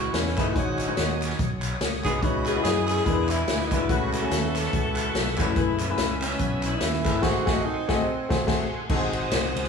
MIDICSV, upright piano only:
0, 0, Header, 1, 2, 480
1, 0, Start_track
1, 0, Tempo, 416956
1, 642, Time_signature, 4, 2, 24, 8
1, 11151, End_track
2, 0, Start_track
2, 0, Title_t, "Upright piano"
2, 0, Program_c, 0, 0
2, 427, Note_on_c, 0, 57, 56
2, 433, Note_on_c, 0, 64, 58
2, 435, Note_on_c, 0, 68, 62
2, 446, Note_on_c, 0, 71, 68
2, 571, Note_off_c, 0, 57, 0
2, 574, Note_off_c, 0, 64, 0
2, 575, Note_off_c, 0, 68, 0
2, 581, Note_off_c, 0, 71, 0
2, 623, Note_on_c, 0, 56, 62
2, 630, Note_on_c, 0, 63, 55
2, 637, Note_on_c, 0, 44, 57
2, 641, Note_on_c, 0, 66, 57
2, 644, Note_on_c, 0, 73, 67
2, 915, Note_off_c, 0, 56, 0
2, 919, Note_off_c, 0, 63, 0
2, 924, Note_off_c, 0, 66, 0
2, 925, Note_off_c, 0, 73, 0
2, 1007, Note_on_c, 0, 56, 53
2, 1012, Note_on_c, 0, 63, 55
2, 1019, Note_on_c, 0, 66, 60
2, 1025, Note_on_c, 0, 72, 50
2, 1071, Note_off_c, 0, 72, 0
2, 1086, Note_on_c, 0, 73, 57
2, 1352, Note_off_c, 0, 44, 0
2, 1657, Note_off_c, 0, 56, 0
2, 1659, Note_off_c, 0, 63, 0
2, 1663, Note_off_c, 0, 66, 0
2, 1696, Note_off_c, 0, 73, 0
2, 2355, Note_on_c, 0, 56, 56
2, 2364, Note_on_c, 0, 63, 59
2, 2371, Note_on_c, 0, 66, 53
2, 2375, Note_on_c, 0, 71, 65
2, 2495, Note_off_c, 0, 56, 0
2, 2500, Note_off_c, 0, 63, 0
2, 2503, Note_off_c, 0, 66, 0
2, 2505, Note_off_c, 0, 71, 0
2, 2564, Note_on_c, 0, 59, 61
2, 2566, Note_on_c, 0, 63, 56
2, 2572, Note_on_c, 0, 49, 49
2, 2575, Note_on_c, 0, 64, 61
2, 2579, Note_on_c, 0, 73, 59
2, 2846, Note_off_c, 0, 59, 0
2, 2847, Note_off_c, 0, 63, 0
2, 2851, Note_off_c, 0, 64, 0
2, 2854, Note_off_c, 0, 73, 0
2, 2938, Note_on_c, 0, 59, 56
2, 2948, Note_on_c, 0, 75, 57
2, 2950, Note_on_c, 0, 64, 52
2, 2953, Note_on_c, 0, 65, 58
2, 2996, Note_off_c, 0, 65, 0
2, 3012, Note_on_c, 0, 66, 66
2, 3280, Note_off_c, 0, 49, 0
2, 3509, Note_off_c, 0, 64, 0
2, 3517, Note_on_c, 0, 56, 70
2, 3521, Note_off_c, 0, 59, 0
2, 3526, Note_off_c, 0, 75, 0
2, 3526, Note_on_c, 0, 62, 68
2, 3526, Note_on_c, 0, 64, 62
2, 3529, Note_on_c, 0, 52, 51
2, 3534, Note_on_c, 0, 70, 57
2, 3558, Note_off_c, 0, 66, 0
2, 3595, Note_off_c, 0, 70, 0
2, 3595, Note_on_c, 0, 71, 70
2, 4112, Note_off_c, 0, 56, 0
2, 4116, Note_off_c, 0, 62, 0
2, 4116, Note_off_c, 0, 64, 0
2, 4151, Note_off_c, 0, 71, 0
2, 4239, Note_off_c, 0, 52, 0
2, 4282, Note_on_c, 0, 56, 66
2, 4285, Note_on_c, 0, 62, 59
2, 4291, Note_on_c, 0, 64, 54
2, 4300, Note_on_c, 0, 71, 67
2, 4419, Note_off_c, 0, 56, 0
2, 4420, Note_off_c, 0, 62, 0
2, 4424, Note_off_c, 0, 64, 0
2, 4428, Note_off_c, 0, 71, 0
2, 4482, Note_on_c, 0, 57, 61
2, 4489, Note_on_c, 0, 61, 56
2, 4491, Note_on_c, 0, 49, 53
2, 4496, Note_on_c, 0, 71, 63
2, 4498, Note_on_c, 0, 66, 52
2, 4765, Note_off_c, 0, 57, 0
2, 4769, Note_off_c, 0, 61, 0
2, 4772, Note_off_c, 0, 71, 0
2, 4773, Note_off_c, 0, 66, 0
2, 4858, Note_on_c, 0, 57, 58
2, 4863, Note_on_c, 0, 61, 57
2, 4875, Note_on_c, 0, 66, 56
2, 4876, Note_on_c, 0, 80, 60
2, 5200, Note_off_c, 0, 49, 0
2, 5503, Note_off_c, 0, 57, 0
2, 5506, Note_off_c, 0, 61, 0
2, 5512, Note_off_c, 0, 66, 0
2, 5512, Note_off_c, 0, 80, 0
2, 6202, Note_on_c, 0, 57, 60
2, 6212, Note_on_c, 0, 61, 54
2, 6214, Note_on_c, 0, 66, 55
2, 6221, Note_on_c, 0, 71, 70
2, 6340, Note_off_c, 0, 57, 0
2, 6345, Note_off_c, 0, 61, 0
2, 6346, Note_off_c, 0, 66, 0
2, 6349, Note_off_c, 0, 71, 0
2, 6406, Note_on_c, 0, 57, 55
2, 6412, Note_on_c, 0, 64, 59
2, 6413, Note_on_c, 0, 68, 59
2, 6419, Note_on_c, 0, 71, 70
2, 6688, Note_off_c, 0, 57, 0
2, 6691, Note_off_c, 0, 64, 0
2, 6692, Note_off_c, 0, 68, 0
2, 6695, Note_off_c, 0, 71, 0
2, 6779, Note_on_c, 0, 59, 57
2, 6789, Note_on_c, 0, 64, 57
2, 6792, Note_on_c, 0, 68, 54
2, 6798, Note_on_c, 0, 71, 67
2, 7425, Note_off_c, 0, 59, 0
2, 7429, Note_off_c, 0, 64, 0
2, 7431, Note_off_c, 0, 68, 0
2, 7434, Note_off_c, 0, 71, 0
2, 8112, Note_on_c, 0, 57, 71
2, 8120, Note_on_c, 0, 64, 59
2, 8121, Note_on_c, 0, 68, 59
2, 8130, Note_on_c, 0, 71, 64
2, 8255, Note_off_c, 0, 57, 0
2, 8260, Note_off_c, 0, 64, 0
2, 8260, Note_off_c, 0, 68, 0
2, 8265, Note_off_c, 0, 71, 0
2, 8308, Note_on_c, 0, 57, 77
2, 8311, Note_on_c, 0, 66, 87
2, 8312, Note_on_c, 0, 44, 76
2, 8314, Note_on_c, 0, 68, 83
2, 8322, Note_on_c, 0, 72, 83
2, 8505, Note_off_c, 0, 57, 0
2, 8506, Note_off_c, 0, 66, 0
2, 8508, Note_off_c, 0, 44, 0
2, 8509, Note_off_c, 0, 68, 0
2, 8513, Note_off_c, 0, 72, 0
2, 8586, Note_on_c, 0, 57, 88
2, 8590, Note_on_c, 0, 66, 85
2, 8593, Note_on_c, 0, 68, 84
2, 8656, Note_on_c, 0, 75, 79
2, 8731, Note_off_c, 0, 57, 0
2, 8733, Note_off_c, 0, 66, 0
2, 8735, Note_off_c, 0, 68, 0
2, 8771, Note_off_c, 0, 75, 0
2, 9075, Note_on_c, 0, 57, 90
2, 9079, Note_on_c, 0, 66, 87
2, 9084, Note_on_c, 0, 68, 91
2, 9149, Note_on_c, 0, 75, 94
2, 9216, Note_off_c, 0, 57, 0
2, 9219, Note_off_c, 0, 66, 0
2, 9221, Note_off_c, 0, 68, 0
2, 9259, Note_off_c, 0, 75, 0
2, 9544, Note_on_c, 0, 57, 79
2, 9553, Note_on_c, 0, 66, 76
2, 9560, Note_on_c, 0, 72, 77
2, 9561, Note_on_c, 0, 68, 77
2, 9690, Note_off_c, 0, 57, 0
2, 9695, Note_off_c, 0, 66, 0
2, 9699, Note_off_c, 0, 68, 0
2, 9699, Note_off_c, 0, 72, 0
2, 9748, Note_on_c, 0, 57, 92
2, 9753, Note_on_c, 0, 66, 92
2, 9759, Note_on_c, 0, 68, 83
2, 9768, Note_on_c, 0, 72, 88
2, 9944, Note_off_c, 0, 57, 0
2, 9947, Note_off_c, 0, 66, 0
2, 9951, Note_off_c, 0, 68, 0
2, 9956, Note_off_c, 0, 72, 0
2, 10240, Note_on_c, 0, 56, 71
2, 10243, Note_on_c, 0, 60, 54
2, 10245, Note_on_c, 0, 44, 61
2, 10246, Note_on_c, 0, 63, 61
2, 10256, Note_on_c, 0, 66, 67
2, 10259, Note_on_c, 0, 69, 56
2, 10312, Note_on_c, 0, 72, 76
2, 10319, Note_off_c, 0, 69, 0
2, 10922, Note_off_c, 0, 56, 0
2, 10923, Note_off_c, 0, 60, 0
2, 10925, Note_off_c, 0, 63, 0
2, 10930, Note_off_c, 0, 66, 0
2, 10956, Note_off_c, 0, 44, 0
2, 10958, Note_off_c, 0, 72, 0
2, 11151, End_track
0, 0, End_of_file